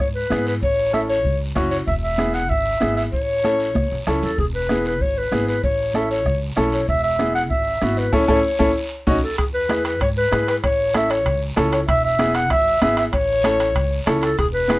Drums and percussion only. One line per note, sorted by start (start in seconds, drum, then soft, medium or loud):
0.00 bombo low medium
0.00 bombo rim medium
0.00 high conga soft
0.00 long guiro medium
0.30 bombo rim medium
0.30 high conga medium
0.30 short guiro medium
0.47 short guiro medium
0.62 bombo low medium
0.62 high conga soft
0.62 long guiro medium
0.94 bombo rim medium
0.94 high conga medium
0.94 short guiro medium
1.10 short guiro medium
1.25 bombo low medium
1.25 high conga soft
1.25 long guiro medium
1.56 bombo low medium
1.56 bombo rim medium
1.56 high conga medium
1.56 short guiro medium
1.71 short guiro medium
1.87 bombo low medium
1.87 high conga soft
1.87 long guiro medium
2.18 bombo rim medium
2.18 high conga medium
2.18 short guiro medium
2.34 short guiro medium
2.49 bombo low medium
2.49 high conga soft
2.49 long guiro medium
2.81 bombo rim medium
2.81 high conga medium
2.81 short guiro medium
2.97 short guiro medium
3.13 bombo low medium
3.13 high conga soft
3.13 long guiro medium
3.44 bombo rim medium
3.44 high conga medium
3.44 short guiro medium
3.60 short guiro medium
3.75 bombo low medium
3.75 bombo rim medium
3.75 high conga loud
3.75 long guiro medium
4.07 bombo rim medium
4.07 low conga medium
4.07 short guiro medium
4.23 low conga medium
4.23 short guiro medium
4.38 bombo low medium
4.38 high conga soft
4.38 long guiro medium
4.69 bombo rim medium
4.69 high conga medium
4.69 short guiro medium
4.85 short guiro medium
5.01 bombo low medium
5.01 high conga soft
5.01 long guiro medium
5.32 bombo rim medium
5.32 high conga medium
5.32 short guiro medium
5.48 short guiro medium
5.64 bombo low medium
5.64 high conga soft
5.64 long guiro medium
5.94 bombo rim medium
5.94 high conga medium
5.94 short guiro medium
6.11 short guiro medium
6.26 bombo low medium
6.26 bombo rim medium
6.26 high conga soft
6.26 long guiro medium
6.57 bombo rim medium
6.57 high conga medium
6.57 short guiro medium
6.72 short guiro medium
6.88 bombo low medium
6.88 high conga soft
6.88 long guiro medium
7.19 bombo rim medium
7.19 high conga medium
7.19 short guiro medium
7.36 short guiro medium
7.50 bombo low medium
7.50 high conga soft
7.50 long guiro medium
7.82 bombo rim medium
7.82 high conga medium
7.82 short guiro medium
7.97 short guiro medium
8.13 bombo low medium
8.13 high conga medium
8.13 long guiro medium
8.29 bombo low medium
8.29 high conga medium
8.29 long guiro medium
8.60 bombo low medium
8.60 high conga medium
8.60 long guiro loud
9.07 bombo low medium
9.07 high conga loud
9.07 long guiro medium
9.38 bombo low medium
9.38 high conga soft
9.38 high timbale medium
9.38 long guiro medium
9.69 bombo rim medium
9.69 high conga medium
9.69 high timbale medium
9.69 short guiro medium
9.85 high timbale medium
9.85 short guiro medium
10.00 bombo low medium
10.00 high conga soft
10.00 high timbale medium
10.00 long guiro medium
10.32 bombo rim medium
10.32 high conga medium
10.32 high timbale medium
10.32 short guiro medium
10.48 high timbale medium
10.48 short guiro medium
10.64 bombo low medium
10.64 high conga soft
10.64 high timbale medium
10.64 long guiro medium
10.94 bombo rim medium
10.94 high conga medium
10.94 high timbale medium
10.94 short guiro medium
11.10 high timbale medium
11.10 short guiro medium
11.26 bombo low medium
11.26 high conga soft
11.26 high timbale medium
11.26 long guiro medium
11.57 bombo low medium
11.57 bombo rim medium
11.57 high conga medium
11.57 high timbale medium
11.57 short guiro medium
11.72 high timbale medium
11.72 short guiro medium
11.88 bombo low medium
11.88 high conga soft
11.88 high timbale medium
11.88 long guiro medium
12.19 bombo rim medium
12.19 high conga medium
12.19 high timbale medium
12.19 short guiro medium
12.34 high timbale medium
12.34 short guiro medium
12.50 bombo low medium
12.50 bombo rim medium
12.50 high conga soft
12.50 high timbale medium
12.50 long guiro medium
12.82 bombo rim medium
12.82 high conga medium
12.82 high timbale medium
12.82 short guiro medium
12.97 high timbale medium
12.97 short guiro medium
13.13 bombo low medium
13.13 high conga soft
13.13 high timbale medium
13.13 long guiro medium
13.44 bombo rim medium
13.44 high conga medium
13.44 high timbale medium
13.44 short guiro medium
13.60 high timbale medium
13.60 short guiro medium
13.75 bombo low medium
13.75 high conga soft
13.75 high timbale medium
13.75 long guiro medium
14.06 bombo rim medium
14.06 high conga medium
14.06 high timbale medium
14.06 short guiro medium
14.22 high timbale medium
14.22 short guiro medium
14.38 bombo low medium
14.38 high conga soft
14.38 high timbale medium
14.38 long guiro medium
14.69 bombo rim medium
14.69 high conga medium
14.69 high timbale medium
14.69 short guiro medium